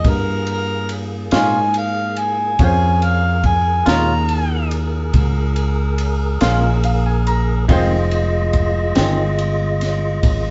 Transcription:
Already playing: A#3 G#4 D#5
0.04 G2, kick, ride
0.09 A#4
0.47 ride
0.52 A#4
0.89 ride
1.31 G#2 A#2 G#3 C#4 F4 G#5, snare, ride
1.74 F5, ride
2.16 G#5, ride
2.59 F2 C#4 F4 G#4 A#4 C5 G#5, kick, ride
3.02 F5, ride
3.44 G#5, kick, ride
3.86 D#2 A#2 G#3 C#4 F4 A#5, snare, ride
4.29 ride
4.71 ride
5.14 C#2, kick, ride
5.56 ride
5.98 ride
6.41 A#1 A#2 G#3 C#4 F4, snare, ride
6.84 F5, ride
7.06 G#5
7.27 A#5, ride
7.68 F1 F2 D#3 G#3 C4 D#4 F4 G#4 C5 D#5, kick, ride
8.11 ride
8.53 kick, ride
8.95 G1 F2 D#3 G#3 C4, snare, ride
9.39 ride
9.81 snare, ride
10.23 G#1, kick, ride

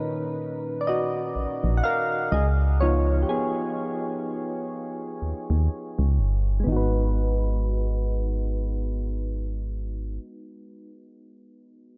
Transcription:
Already playing: A#2 D#3 C#4 D#4 A#4 B4
0.81 D5
0.87 F#4 D#5
1.36 A#1
1.64 A#1
1.77 F#5
1.84 A#4 F5
2.32 C#2 G#4 D#5
2.80 F3 B3 D#4 F4 C#5
3.22 G4
3.29 B3 G#4
5.22 D#2
5.50 D#2
5.99 C#2
6.19 G1
6.60 G#3 B3
6.67 G#1 D#4
6.72 F#4
6.76 B4

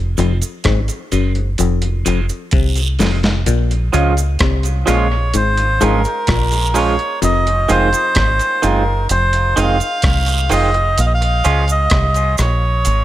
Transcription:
Already playing: F1
0.17 F1 F2 D#3 G#3 C4 F4, closed hi-hat, cabasa
0.42 closed hi-hat, cabasa
0.64 G#1 G#2, kick, cross-stick, closed hi-hat
0.88 closed hi-hat, cabasa
1.12 F#1 F#2 D#3 G#3 C4 F4, closed hi-hat, cabasa
1.35 closed hi-hat
1.58 F1 F2, closed hi-hat, cabasa
1.82 closed hi-hat
2.05 F1 F2 D#3 G#3 C4 F4, closed hi-hat, cabasa
2.29 closed hi-hat, cabasa
2.51 C2 C3, kick, closed hi-hat, long guiro
2.75 closed hi-hat, cabasa
2.99 F1 F2 D#3 G#3 C4 F4, snare, open hi-hat, cabasa
3.23 muted clean electric guitar stroke, snare, closed hi-hat
3.46 A#1 A#2, closed hi-hat, cabasa
3.71 closed hi-hat
3.93 C#2 C#3 F3 G#3 C#4 F4, closed hi-hat, cabasa
4.17 closed hi-hat, cabasa
4.39 C2 C3, kick, cross-stick, closed hi-hat
4.63 closed hi-hat, cabasa
4.86 A#1 A#2 F3 G#3 C#4 F4 C#5, cross-stick, closed hi-hat, cabasa
5.34 G#1 G#2 C5, closed hi-hat, cabasa
5.57 closed hi-hat
5.81 G#1 G#2 F3 G#3 C#4 F4 A#4, closed hi-hat, cabasa
6.05 closed hi-hat, cabasa
6.27 A#1 A#2, kick, cross-stick, closed hi-hat, long guiro
6.51 closed hi-hat, cabasa
6.74 F3 G#3 C#4 F4 C#5, open hi-hat, cabasa
6.99 closed hi-hat
7.22 F1 F2 D#5, closed hi-hat, cabasa
7.47 closed hi-hat
7.69 F1 D#3 G#3 C4 F4 C5, closed hi-hat, cabasa
7.93 closed hi-hat, cabasa
8.15 G#1, kick, cross-stick, closed hi-hat
8.39 closed hi-hat, cabasa
8.62 F#1 D#3 G#3 C4 F4 A#4, closed hi-hat, cabasa
9.09 F1 C5, closed hi-hat, cabasa
9.33 closed hi-hat
9.56 F1 D#3 G#3 C4 F4 F5, closed hi-hat, cabasa
9.80 closed hi-hat, cabasa
10.02 C2, kick, cross-stick, closed hi-hat, long guiro
10.26 closed hi-hat, cabasa
10.49 F1 D#3 G#3 C4 F4 D#5, open hi-hat, cabasa
10.74 muted clean electric guitar stroke, closed hi-hat
10.98 A#1 F5, closed hi-hat, cabasa
11.06 D#5
11.14 F5
11.22 closed hi-hat
11.44 C#2 F3 G#3 C#4 F4, closed hi-hat, cabasa
11.68 D#5, closed hi-hat, cabasa
11.90 C2, kick, cross-stick, closed hi-hat
12.14 closed hi-hat, cabasa
12.38 A#1 C#5, cross-stick, closed hi-hat, cabasa
12.85 G#1, closed hi-hat, cabasa

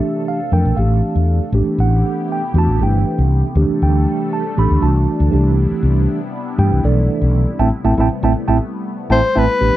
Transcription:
Already playing: C3 E3 A3 D4 G4 A4 E5
0.28 F5
0.52 F2 E3 A3 D4 A#4 G5
0.65 A#1
0.77 A1 E3 A3 D4 G4 F5
1.15 E2
1.52 A1 C3 E3 A3 B3 D4 E4 G4
1.66 muted fretless electric bass stroke
1.78 A1 F#5
2.32 G5
2.54 E2 E3 A3 D4 F#4
2.58 A5
2.67 A1
2.80 G1 E3 A3 D4 G4 G5
3.18 C2
3.55 D2 E3 G3 A3 D4 G4 A4
3.69 muted fretless electric bass stroke
3.82 D2 G5
4.33 A5
4.57 A1 E3 A3 D4 G4 B5
4.71 D2
4.82 C2 E3 A3 D4 F#4 A5
5.20 D2
5.31 C2 C3 E3 G3 A3 B3 D4 E4 G4
5.71 muted fretless electric bass stroke
5.83 C2
6.58 G2 E3 A3 D4 G4 G5
6.72 C2
6.84 B1 E3 A3 D4 A4 D5
7.22 B1
7.59 A1 G3 A3 B3 C4 E4 E5 G5 A5
7.84 A1 A3 C4 E4 E5 G5 A5
7.97 A1 A3 C4 E4 E5 G5 A5
8.23 A1 A3 C4 E4 E5 G5 A5
8.48 A1 A3 C4 E4 E5 G5 A5
9.10 A1 A3 C4 E4 C5 E5 G5 A5
9.35 A1 A3 C4 E4 B4 E5 G5 A5
9.60 A1 C3 E3 G3 A3 B3 D4 E4 G4

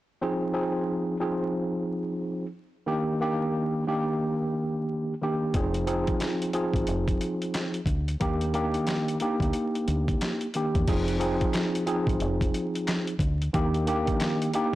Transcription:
0.21 F3 C4 D#4 G#4
0.53 F3 C4 D#4 G#4
1.20 F3 C4 D#4 G#4
2.87 D#3 A#3 D4 G4
3.20 D#3 A#3 D4 G4
3.87 D#3 A#3 D4 G4
5.22 D#3 A#3 D4 G4
5.54 F1 F3 C4 D#4 G#4, kick, closed hi-hat
5.74 closed hi-hat
5.87 F3 C4 D#4 G#4, closed hi-hat
6.07 kick, closed hi-hat
6.20 snare, clap, closed hi-hat
6.42 closed hi-hat
6.53 F3 C4 D#4 G#4, closed hi-hat
6.74 G#1, kick, closed hi-hat
6.87 F1, closed hi-hat
7.08 kick, closed hi-hat
7.21 closed hi-hat
7.42 closed hi-hat
7.54 snare, clap, closed hi-hat
7.74 closed hi-hat
7.86 D2, kick, closed hi-hat
8.08 closed hi-hat
8.20 D#2 D#3 A#3 D4 G4, kick, closed hi-hat
8.41 closed hi-hat
8.54 D#3 A#3 D4 G4, closed hi-hat
8.74 closed hi-hat
8.87 snare, clap, closed hi-hat
9.08 closed hi-hat
9.20 A#3 D4 D#4 G4, closed hi-hat
9.40 D2, kick, closed hi-hat
9.53 closed hi-hat
9.75 closed hi-hat
9.88 D2, closed hi-hat
10.08 kick, closed hi-hat
10.21 snare, clap, closed hi-hat
10.41 closed hi-hat
10.54 D#3 A#3 D4 G4, closed hi-hat
10.75 E2, kick, closed hi-hat
10.88 F1 F3 C4 D#4 G#4, kick, closed hi-hat, crash
11.08 closed hi-hat
11.19 F3 C4 D#4 G#4, closed hi-hat
11.41 kick, closed hi-hat
11.53 finger snap, snare, clap, closed hi-hat
11.75 closed hi-hat
11.86 F3 C4 D#4 G#4, closed hi-hat
12.07 G#1, kick, closed hi-hat
12.20 F1, closed hi-hat
12.41 kick, closed hi-hat
12.54 closed hi-hat
12.75 closed hi-hat
12.87 finger snap, snare, clap, closed hi-hat
13.07 closed hi-hat
13.19 D2, kick, closed hi-hat
13.42 closed hi-hat
13.53 D#2 D#3 A#3 D4 G4, kick, closed hi-hat
13.74 closed hi-hat
13.87 D#3 A#3 D4 G4, closed hi-hat
14.07 kick, closed hi-hat
14.20 finger snap, snare, clap, closed hi-hat
14.42 closed hi-hat
14.54 A#3 D4 D#4 G4, closed hi-hat

